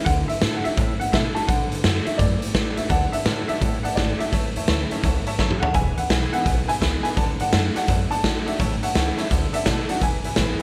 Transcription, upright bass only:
0, 0, Header, 1, 3, 480
1, 0, Start_track
1, 0, Tempo, 355240
1, 85, Time_signature, 4, 2, 24, 8
1, 14351, End_track
2, 0, Start_track
2, 0, Title_t, "Upright bass"
2, 0, Program_c, 0, 32
2, 87, Note_on_c, 0, 38, 86
2, 322, Note_off_c, 0, 38, 0
2, 568, Note_on_c, 0, 45, 78
2, 803, Note_off_c, 0, 45, 0
2, 1045, Note_on_c, 0, 45, 95
2, 1281, Note_off_c, 0, 45, 0
2, 1528, Note_on_c, 0, 47, 79
2, 1763, Note_off_c, 0, 47, 0
2, 2005, Note_on_c, 0, 47, 94
2, 2241, Note_off_c, 0, 47, 0
2, 2308, Note_on_c, 0, 45, 83
2, 2440, Note_off_c, 0, 45, 0
2, 2487, Note_on_c, 0, 42, 89
2, 2723, Note_off_c, 0, 42, 0
2, 2964, Note_on_c, 0, 42, 82
2, 3201, Note_off_c, 0, 42, 0
2, 3440, Note_on_c, 0, 42, 89
2, 3679, Note_off_c, 0, 42, 0
2, 3756, Note_on_c, 0, 42, 84
2, 3885, Note_off_c, 0, 42, 0
2, 3920, Note_on_c, 0, 38, 87
2, 4158, Note_off_c, 0, 38, 0
2, 4399, Note_on_c, 0, 45, 88
2, 4638, Note_off_c, 0, 45, 0
2, 4885, Note_on_c, 0, 45, 94
2, 5122, Note_off_c, 0, 45, 0
2, 5370, Note_on_c, 0, 32, 82
2, 5605, Note_off_c, 0, 32, 0
2, 5849, Note_on_c, 0, 33, 88
2, 6085, Note_off_c, 0, 33, 0
2, 6162, Note_on_c, 0, 40, 90
2, 6290, Note_off_c, 0, 40, 0
2, 6331, Note_on_c, 0, 38, 86
2, 6566, Note_off_c, 0, 38, 0
2, 6805, Note_on_c, 0, 37, 90
2, 7043, Note_off_c, 0, 37, 0
2, 7291, Note_on_c, 0, 37, 84
2, 7526, Note_off_c, 0, 37, 0
2, 7595, Note_on_c, 0, 38, 80
2, 7726, Note_off_c, 0, 38, 0
2, 7763, Note_on_c, 0, 28, 89
2, 8001, Note_off_c, 0, 28, 0
2, 8239, Note_on_c, 0, 35, 87
2, 8479, Note_off_c, 0, 35, 0
2, 8728, Note_on_c, 0, 35, 91
2, 8965, Note_off_c, 0, 35, 0
2, 9214, Note_on_c, 0, 37, 87
2, 9448, Note_off_c, 0, 37, 0
2, 9693, Note_on_c, 0, 38, 90
2, 9927, Note_off_c, 0, 38, 0
2, 10003, Note_on_c, 0, 45, 86
2, 10130, Note_off_c, 0, 45, 0
2, 10175, Note_on_c, 0, 42, 85
2, 10409, Note_off_c, 0, 42, 0
2, 10659, Note_on_c, 0, 42, 100
2, 10891, Note_off_c, 0, 42, 0
2, 11140, Note_on_c, 0, 42, 90
2, 11371, Note_off_c, 0, 42, 0
2, 11434, Note_on_c, 0, 42, 89
2, 11565, Note_off_c, 0, 42, 0
2, 11616, Note_on_c, 0, 33, 90
2, 11849, Note_off_c, 0, 33, 0
2, 12098, Note_on_c, 0, 37, 92
2, 12330, Note_off_c, 0, 37, 0
2, 12577, Note_on_c, 0, 38, 94
2, 12809, Note_off_c, 0, 38, 0
2, 13060, Note_on_c, 0, 47, 83
2, 13291, Note_off_c, 0, 47, 0
2, 13532, Note_on_c, 0, 28, 93
2, 13766, Note_off_c, 0, 28, 0
2, 13843, Note_on_c, 0, 35, 84
2, 13970, Note_off_c, 0, 35, 0
2, 14011, Note_on_c, 0, 33, 92
2, 14245, Note_off_c, 0, 33, 0
2, 14351, End_track
3, 0, Start_track
3, 0, Title_t, "Muted upright bass strokes"
3, 890, Note_on_c, 9, 29, 65
3, 1025, Note_off_c, 9, 29, 0
3, 1366, Note_on_c, 9, 29, 65
3, 1501, Note_off_c, 9, 29, 0
3, 1833, Note_on_c, 9, 29, 62
3, 1968, Note_off_c, 9, 29, 0
3, 2805, Note_on_c, 9, 29, 65
3, 2940, Note_off_c, 9, 29, 0
3, 3284, Note_on_c, 9, 29, 62
3, 3419, Note_off_c, 9, 29, 0
3, 4233, Note_on_c, 9, 29, 72
3, 4368, Note_off_c, 9, 29, 0
3, 4720, Note_on_c, 9, 29, 71
3, 4855, Note_off_c, 9, 29, 0
3, 5197, Note_on_c, 9, 29, 73
3, 5333, Note_off_c, 9, 29, 0
3, 5677, Note_on_c, 9, 29, 68
3, 5812, Note_off_c, 9, 29, 0
3, 6645, Note_on_c, 9, 29, 67
3, 6780, Note_off_c, 9, 29, 0
3, 7124, Note_on_c, 9, 29, 70
3, 7260, Note_off_c, 9, 29, 0
3, 8076, Note_on_c, 9, 29, 73
3, 8211, Note_off_c, 9, 29, 0
3, 9036, Note_on_c, 9, 29, 65
3, 9171, Note_off_c, 9, 29, 0
3, 10492, Note_on_c, 9, 29, 66
3, 10627, Note_off_c, 9, 29, 0
3, 10957, Note_on_c, 9, 29, 63
3, 11092, Note_off_c, 9, 29, 0
3, 11926, Note_on_c, 9, 29, 75
3, 12061, Note_off_c, 9, 29, 0
3, 12882, Note_on_c, 9, 29, 70
3, 13017, Note_off_c, 9, 29, 0
3, 13364, Note_on_c, 9, 29, 64
3, 13499, Note_off_c, 9, 29, 0
3, 14351, End_track
0, 0, End_of_file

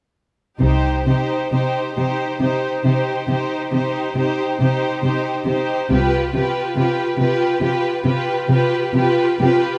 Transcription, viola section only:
0, 0, Header, 1, 2, 480
1, 0, Start_track
1, 0, Key_signature, -3, "minor"
1, 0, Tempo, 910470
1, 319, Time_signature, 12, 3, 24, 8
1, 1274, Tempo, 874636
1, 3194, Tempo, 859599
1, 4634, Tempo, 923077
1, 5303, End_track
2, 0, Start_track
2, 0, Title_t, "Viola section"
2, 0, Program_c, 0, 48
2, 316, Note_on_c, 0, 63, 29
2, 553, Note_off_c, 0, 63, 0
2, 560, Note_on_c, 0, 63, 29
2, 797, Note_off_c, 0, 63, 0
2, 804, Note_on_c, 0, 63, 27
2, 1028, Note_off_c, 0, 63, 0
2, 1034, Note_on_c, 0, 63, 32
2, 1265, Note_off_c, 0, 63, 0
2, 1276, Note_on_c, 0, 63, 28
2, 1506, Note_off_c, 0, 63, 0
2, 1513, Note_on_c, 0, 63, 29
2, 1750, Note_off_c, 0, 63, 0
2, 1758, Note_on_c, 0, 63, 32
2, 1994, Note_off_c, 0, 63, 0
2, 2003, Note_on_c, 0, 63, 34
2, 2237, Note_off_c, 0, 63, 0
2, 2248, Note_on_c, 0, 63, 30
2, 2479, Note_off_c, 0, 63, 0
2, 2490, Note_on_c, 0, 63, 33
2, 2718, Note_off_c, 0, 63, 0
2, 2726, Note_on_c, 0, 63, 34
2, 2955, Note_off_c, 0, 63, 0
2, 2962, Note_on_c, 0, 63, 31
2, 3192, Note_off_c, 0, 63, 0
2, 3198, Note_on_c, 0, 65, 36
2, 3432, Note_off_c, 0, 65, 0
2, 3448, Note_on_c, 0, 65, 32
2, 3674, Note_off_c, 0, 65, 0
2, 3681, Note_on_c, 0, 65, 34
2, 3907, Note_off_c, 0, 65, 0
2, 3915, Note_on_c, 0, 65, 37
2, 4143, Note_off_c, 0, 65, 0
2, 4149, Note_on_c, 0, 65, 33
2, 4384, Note_off_c, 0, 65, 0
2, 4392, Note_on_c, 0, 65, 39
2, 4631, Note_off_c, 0, 65, 0
2, 4646, Note_on_c, 0, 65, 38
2, 4867, Note_off_c, 0, 65, 0
2, 4873, Note_on_c, 0, 65, 43
2, 5106, Note_off_c, 0, 65, 0
2, 5114, Note_on_c, 0, 65, 39
2, 5303, Note_off_c, 0, 65, 0
2, 5303, End_track
0, 0, End_of_file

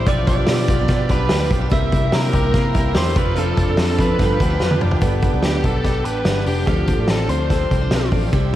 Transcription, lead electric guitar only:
0, 0, Header, 1, 2, 480
1, 0, Start_track
1, 0, Tempo, 412939
1, 83, Time_signature, 4, 2, 24, 8
1, 9947, End_track
2, 0, Start_track
2, 0, Title_t, "Lead electric guitar"
2, 0, Program_c, 0, 29
2, 90, Note_on_c, 0, 74, 106
2, 310, Note_off_c, 0, 74, 0
2, 324, Note_on_c, 0, 74, 94
2, 1290, Note_off_c, 0, 74, 0
2, 1294, Note_on_c, 0, 71, 92
2, 1734, Note_off_c, 0, 71, 0
2, 2010, Note_on_c, 0, 76, 113
2, 2491, Note_on_c, 0, 70, 90
2, 2498, Note_off_c, 0, 76, 0
2, 2715, Note_off_c, 0, 70, 0
2, 2728, Note_on_c, 0, 70, 102
2, 3452, Note_off_c, 0, 70, 0
2, 3457, Note_on_c, 0, 72, 93
2, 3688, Note_off_c, 0, 72, 0
2, 3693, Note_on_c, 0, 71, 83
2, 3908, Note_off_c, 0, 71, 0
2, 3936, Note_on_c, 0, 69, 87
2, 4402, Note_off_c, 0, 69, 0
2, 4416, Note_on_c, 0, 69, 95
2, 4630, Note_off_c, 0, 69, 0
2, 4663, Note_on_c, 0, 71, 82
2, 5563, Note_off_c, 0, 71, 0
2, 6337, Note_on_c, 0, 67, 70
2, 6573, Note_on_c, 0, 69, 92
2, 6574, Note_off_c, 0, 67, 0
2, 7030, Note_off_c, 0, 69, 0
2, 7035, Note_on_c, 0, 71, 86
2, 7483, Note_off_c, 0, 71, 0
2, 7526, Note_on_c, 0, 67, 75
2, 7741, Note_off_c, 0, 67, 0
2, 7755, Note_on_c, 0, 67, 90
2, 8252, Note_off_c, 0, 67, 0
2, 8257, Note_on_c, 0, 69, 85
2, 8472, Note_off_c, 0, 69, 0
2, 8490, Note_on_c, 0, 72, 92
2, 9399, Note_off_c, 0, 72, 0
2, 9947, End_track
0, 0, End_of_file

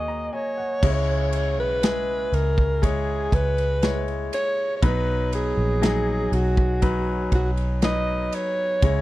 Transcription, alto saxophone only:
0, 0, Header, 1, 2, 480
1, 0, Start_track
1, 0, Tempo, 1000000
1, 396, Time_signature, 4, 2, 24, 8
1, 4327, End_track
2, 0, Start_track
2, 0, Title_t, "Alto saxophone"
2, 0, Program_c, 0, 65
2, 0, Note_on_c, 0, 75, 78
2, 161, Note_on_c, 0, 73, 84
2, 169, Note_off_c, 0, 75, 0
2, 759, Note_off_c, 0, 73, 0
2, 766, Note_on_c, 0, 71, 108
2, 1126, Note_on_c, 0, 70, 94
2, 1133, Note_off_c, 0, 71, 0
2, 1365, Note_on_c, 0, 68, 88
2, 1372, Note_off_c, 0, 70, 0
2, 1604, Note_on_c, 0, 71, 110
2, 1612, Note_off_c, 0, 68, 0
2, 1951, Note_off_c, 0, 71, 0
2, 2084, Note_on_c, 0, 73, 109
2, 2272, Note_off_c, 0, 73, 0
2, 2287, Note_on_c, 0, 73, 71
2, 2322, Note_on_c, 0, 71, 99
2, 2329, Note_off_c, 0, 73, 0
2, 2559, Note_off_c, 0, 71, 0
2, 2566, Note_on_c, 0, 68, 90
2, 3043, Note_on_c, 0, 66, 98
2, 3051, Note_off_c, 0, 68, 0
2, 3520, Note_off_c, 0, 66, 0
2, 3527, Note_on_c, 0, 66, 93
2, 3604, Note_off_c, 0, 66, 0
2, 3766, Note_on_c, 0, 75, 93
2, 4007, Note_on_c, 0, 73, 100
2, 4014, Note_off_c, 0, 75, 0
2, 4327, Note_off_c, 0, 73, 0
2, 4327, End_track
0, 0, End_of_file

